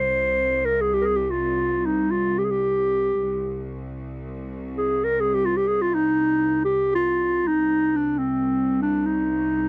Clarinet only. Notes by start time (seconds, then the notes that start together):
Already playing: C5
0.65 A#4
0.81 G#4
0.94 G4
1.01 G#4 A#4
1.16 G4
1.31 F4
1.86 D#4
2.11 F4
2.38 G4
2.45 G#4
2.50 G4
4.78 G#4
5.04 A#4
5.20 G#4
5.34 G4
5.45 F4
5.57 G4
5.68 G#4
5.81 F4
5.95 D#4
6.64 G4
6.95 F4
7.47 D#4
7.96 D4
8.18 C4
8.82 D4
9.06 D#4